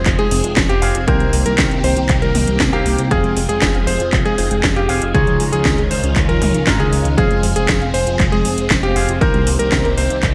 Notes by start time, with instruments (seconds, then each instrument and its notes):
Already playing: string machine F3 G#3 C4 G#4, clean electric guitar C4 F4 G#4 F5
0.06 analog synth bass F1, synth arpeggio sound F3, kick, clap, closed hi-hat
0.19 analog synth bass F1, synth arpeggio sound G#3, electric grand piano G#4, closed hi-hat
0.31 analog synth bass F1, synth arpeggio sound C4, open hi-hat
0.44 analog synth bass F1, synth arpeggio sound G#3, closed hi-hat
0.57 analog synth bass F1, synth arpeggio sound F3, kick, snare, clap, closed hi-hat
0.69 analog synth bass F1, electric grand piano G4, synth arpeggio sound F5, closed hi-hat
0.82 analog synth bass F1, synth arpeggio sound C4, clean electric guitar C4 F4 G#4 F5, open hi-hat
0.95 analog synth bass F1, synth arpeggio sound F4, closed hi-hat
1.07 analog synth bass C2, synth arpeggio sound D#3, string machine D#3 A#3 G4, clean electric guitar A#3 D#4 G4 C5, electric grand piano A#4, kick, closed hi-hat
1.20 analog synth bass C2, synth arpeggio sound G3, closed hi-hat
1.33 analog synth bass C2, synth arpeggio sound A#3, open hi-hat
1.46 analog synth bass C2, synth arpeggio sound G3, electric grand piano A#4, closed hi-hat
1.58 analog synth bass C2, synth arpeggio sound D#3, kick, snare, clap, closed hi-hat
1.71 analog synth bass C2, synth arpeggio sound A#4, closed hi-hat
1.84 analog synth bass C2, synth arpeggio sound A#3, electric grand piano C5, open hi-hat
1.97 analog synth bass C2, synth arpeggio sound C4, closed hi-hat
2.09 analog synth bass C2, synth arpeggio sound D#3, kick, clap, closed hi-hat
2.22 analog synth bass C2, synth arpeggio sound G3, electric grand piano A#4, closed hi-hat
2.35 analog synth bass C2, synth arpeggio sound A#3, open hi-hat, high tom
2.47 analog synth bass C2, synth arpeggio sound G3, closed hi-hat
2.60 analog synth bass C2, synth arpeggio sound D#3, kick, snare, clap, closed hi-hat
2.73 analog synth bass C2, clean electric guitar A#3 D#4 G4 F5, electric grand piano G4, synth arpeggio sound A#4, closed hi-hat
2.86 analog synth bass C2, synth arpeggio sound A#3, open hi-hat
2.98 analog synth bass C2, synth arpeggio sound C4, closed hi-hat
3.11 analog synth bass F1, string machine F3 G#3 G#4, synth arpeggio sound F3, clean electric guitar C4 F4 G#4 F5, electric grand piano G#4, kick, closed hi-hat
3.24 analog synth bass F1, synth arpeggio sound G#3, closed hi-hat
3.36 analog synth bass F1, synth arpeggio sound C4, open hi-hat
3.49 analog synth bass F1, synth arpeggio sound G#3, electric grand piano G#4, closed hi-hat
3.62 analog synth bass F1, synth arpeggio sound F3, kick, snare, clap, closed hi-hat
3.75 analog synth bass F1, synth arpeggio sound F5, closed hi-hat
3.87 analog synth bass F1, synth arpeggio sound C4, electric grand piano C5, open hi-hat
4.00 analog synth bass F1, synth arpeggio sound F4, closed hi-hat
4.13 analog synth bass F1, synth arpeggio sound F3, kick, clap, closed hi-hat
4.25 analog synth bass F1, synth arpeggio sound G#3, electric grand piano G#4, closed hi-hat
4.38 analog synth bass F1, synth arpeggio sound C4, open hi-hat
4.51 analog synth bass F1, synth arpeggio sound G#3, closed hi-hat
4.64 analog synth bass F1, synth arpeggio sound F3, kick, snare, clap, closed hi-hat
4.76 analog synth bass F1, electric grand piano G4, synth arpeggio sound F5, closed hi-hat
4.89 analog synth bass F1, synth arpeggio sound C4, clean electric guitar C4 F4 G#4 F5, open hi-hat
5.02 analog synth bass F1, synth arpeggio sound F4, closed hi-hat
5.14 analog synth bass C#2, string machine D#3 C#4 F4, synth arpeggio sound D#3, clean electric guitar G#3 D#4 F4 C#5, electric grand piano G#4, kick, closed hi-hat
5.27 analog synth bass C#2, synth arpeggio sound F3, closed hi-hat
5.40 analog synth bass C#2, synth arpeggio sound G#3, open hi-hat
5.52 analog synth bass C#2, synth arpeggio sound F3, electric grand piano G#4, closed hi-hat
5.65 analog synth bass C#2, synth arpeggio sound D#3, kick, snare, clap, closed hi-hat
5.78 analog synth bass C#2, synth arpeggio sound G#4, closed hi-hat
5.91 analog synth bass C#2, synth arpeggio sound G#3, electric grand piano C5, open hi-hat
6.03 analog synth bass C#2, synth arpeggio sound C#4, closed hi-hat
6.16 analog synth bass C#2, synth arpeggio sound D#3, kick, clap, closed hi-hat
6.29 analog synth bass C#2, synth arpeggio sound F3, electric grand piano A#4, closed hi-hat
6.42 analog synth bass C#2, synth arpeggio sound D#4, open hi-hat, high tom
6.54 analog synth bass C#2, synth arpeggio sound F3, closed hi-hat
6.67 analog synth bass G#1, clean electric guitar G#3 D#4 F4 A#4, synth arpeggio sound D#4, kick, snare, clap, closed hi-hat
6.80 analog synth bass C#2, synth arpeggio sound D#3, electric grand piano G#4, closed hi-hat
6.92 analog synth bass C#2, synth arpeggio sound G#3, open hi-hat
7.05 analog synth bass C#2, synth arpeggio sound D#3, closed hi-hat
7.17 analog synth bass F1, synth arpeggio sound F3, string machine F3 C4 G#4, clean electric guitar C4 F4 G#4 F5, electric grand piano G#4, kick, closed hi-hat
7.31 analog synth bass F1, synth arpeggio sound G#3, closed hi-hat
7.43 analog synth bass F1, synth arpeggio sound C4, open hi-hat
7.56 analog synth bass F1, synth arpeggio sound G#3, electric grand piano G#4, closed hi-hat
7.69 analog synth bass F1, synth arpeggio sound F3, kick, snare, clap, closed hi-hat
7.81 analog synth bass F1, synth arpeggio sound F5, closed hi-hat
7.94 analog synth bass F1, synth arpeggio sound C4, electric grand piano C5, open hi-hat
8.07 analog synth bass F1, synth arpeggio sound F4, closed hi-hat
8.19 analog synth bass F1, synth arpeggio sound F3, kick, clap, closed hi-hat
8.32 analog synth bass F1, synth arpeggio sound G#3, electric grand piano G#4, closed hi-hat
8.45 analog synth bass F1, synth arpeggio sound C4, open hi-hat
8.58 analog synth bass F1, synth arpeggio sound G#3, closed hi-hat
8.70 analog synth bass F1, synth arpeggio sound F3, kick, snare, clap, closed hi-hat
8.83 analog synth bass F1, electric grand piano G4, synth arpeggio sound F5, closed hi-hat
8.95 analog synth bass F1, synth arpeggio sound C4, clean electric guitar C4 F4 G#4 F5, open hi-hat
9.09 analog synth bass F1, synth arpeggio sound F4, closed hi-hat
9.21 analog synth bass C2, synth arpeggio sound D#3, string machine D#3 A#3 G4, clean electric guitar A#3 D#4 G4 C5, electric grand piano A#4, kick, closed hi-hat
9.34 analog synth bass C2, synth arpeggio sound G3, closed hi-hat
9.47 analog synth bass C2, synth arpeggio sound A#3, open hi-hat
9.59 analog synth bass C2, synth arpeggio sound G3, electric grand piano A#4, closed hi-hat
9.72 analog synth bass C2, synth arpeggio sound D#3, kick, snare, clap, closed hi-hat
9.85 analog synth bass C2, synth arpeggio sound A#4, closed hi-hat
9.97 analog synth bass C2, synth arpeggio sound A#3, electric grand piano C5, open hi-hat
10.10 analog synth bass C2, synth arpeggio sound C4, closed hi-hat
10.23 analog synth bass C2, synth arpeggio sound D#3, kick, clap, closed hi-hat